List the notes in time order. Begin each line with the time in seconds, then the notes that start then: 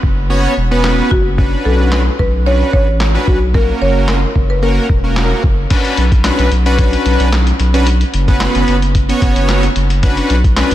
0.03 F#1, kick
0.30 B3 C#4 F#4 C#5
0.57 E1
0.71 B3 C#4 F#4 B4
0.84 snare, clap
1.11 F#1 F#4, kick
1.38 C#4 D4 F#4 B4, kick
1.65 B1 A4
1.92 B4, snare, clap
2.19 B1 B4, kick
2.46 C#4 D4 F#4 B4 C#5
2.73 A1 C#5, kick
3.00 snare, clap
3.14 C#4 D4 F#4 B4
3.27 B1 F#4, kick
3.54 A#3 C#4 F#4 A#4, kick
3.81 F#1 C#5
4.08 A#4, snare, clap
4.36 F#1, kick
4.50 B4
4.62 A#3 C#4 F#4 A#4
4.89 E1, kick
5.04 A#3 C#4 F#4 A#4
5.16 snare, clap
5.44 F#1, kick
5.70 C#4 D4 F#4 B4, kick, closed hi-hat, crash
5.85 closed hi-hat
5.97 B1, closed hi-hat
6.12 kick, closed hi-hat
6.24 C#4 D4 F#4 B4, snare, clap, closed hi-hat
6.39 B1, closed hi-hat
6.52 B1, closed hi-hat
6.66 C#4 D4 F#4 B4, closed hi-hat
6.79 kick, closed hi-hat
6.93 closed hi-hat
7.06 B1, closed hi-hat
7.20 B1, closed hi-hat
7.33 snare, clap, closed hi-hat
7.47 closed hi-hat
7.60 B1, closed hi-hat
7.74 C#4 D4 F#4 B4, closed hi-hat
7.87 closed hi-hat
8.01 closed hi-hat
8.14 F#1, closed hi-hat
8.28 B3 C#4 F#4 B4, kick, closed hi-hat
8.40 snare, clap, closed hi-hat
8.55 F#1, closed hi-hat
8.68 F#1, closed hi-hat
8.82 closed hi-hat
8.95 kick, closed hi-hat
9.09 B3 C#4 F#4 C#5, closed hi-hat
9.22 F#1, kick, closed hi-hat
9.36 F#1, closed hi-hat
9.49 snare, clap, closed hi-hat
9.63 closed hi-hat
9.76 F#1, closed hi-hat
9.90 closed hi-hat
10.03 C#4 D4 F#4 B4, kick, closed hi-hat
10.17 closed hi-hat
10.30 B1, closed hi-hat
10.44 kick, closed hi-hat
10.57 C#4 D4 F#4 B4, snare, clap, closed hi-hat
10.71 B1, closed hi-hat